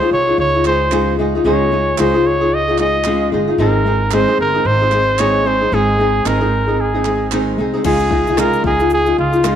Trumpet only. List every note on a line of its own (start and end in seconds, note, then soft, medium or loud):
0.00 0.11 C5 medium
0.13 0.37 C#5 medium
0.40 0.64 C#5 medium
0.67 1.16 C5 medium
1.47 2.01 C#5 medium
2.00 2.28 C5 medium
2.27 2.56 C#5 medium
2.54 2.80 D#5 medium
2.80 3.29 D#5 medium
3.61 4.16 A#4 medium
4.14 4.40 C5 medium
4.41 4.68 A#4 medium
4.66 5.22 C5 medium
5.20 5.49 C#5 medium
5.47 5.76 C5 medium
5.74 6.28 G#4 medium
6.27 6.82 A#4 medium
6.81 7.33 G#4 medium
7.86 8.41 G#4 medium
8.39 8.65 A#4 medium
8.66 8.90 G#4 medium
8.94 9.17 G#4 medium
9.19 9.55 F4 medium